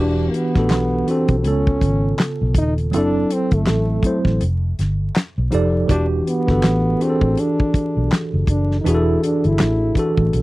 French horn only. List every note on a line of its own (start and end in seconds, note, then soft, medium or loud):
0.00 0.31 D4 medium
0.30 0.37 A#3 medium
0.36 1.11 B3 medium
1.10 1.39 C4 medium
1.40 1.48 C4 medium
1.46 2.19 C#4 medium
2.58 2.74 D#4 medium
2.95 3.34 D4 medium
3.33 3.55 C4 medium
3.54 4.27 A3 medium
5.90 6.06 D4 loud
6.28 7.04 B3 medium
7.02 7.41 C4 medium
7.40 8.12 D4 medium
8.50 8.78 D4 medium
8.81 8.88 D#4 medium
8.87 9.23 E4 loud
9.24 9.48 D4 medium
9.46 10.19 E4 medium